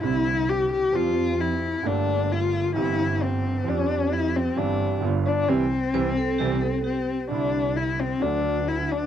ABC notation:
X:1
M:4/4
L:1/8
Q:1/4=132
K:C
V:1 name="Vibraphone"
z8 | z8 | z8 | z2 c A G A G2 |
z8 |]
V:2 name="Cello"
E2 G G F2 E2 | D2 F2 E2 C2 | D2 E C D2 z D | C6 C2 |
D2 E C D2 E D |]
V:3 name="Grand piano" clef=bass
[C,,C,D,G,CE]4 [F,,F,G,CG]4 | [G,,,G,,D,A,_B,G]4 [G,,,G,,E,G,CG]4 | [F,,F,G,CG]4 [G,,,G,,E,G,CG]2 [G,,,G,,D,G,B,F]2 | [C,E,G,] z [C,E,G,] z [C,E,G,] z3 |
[C,,C,D,G,CE]4 [D,,D,^F,A,^F]4 |]
V:4 name="Double bass" clef=bass
C,,4 F,,4 | G,,,4 G,,,4 | F,,4 G,,,2 G,,,2 | C,, z C,, z C,, z3 |
C,,4 D,,4 |]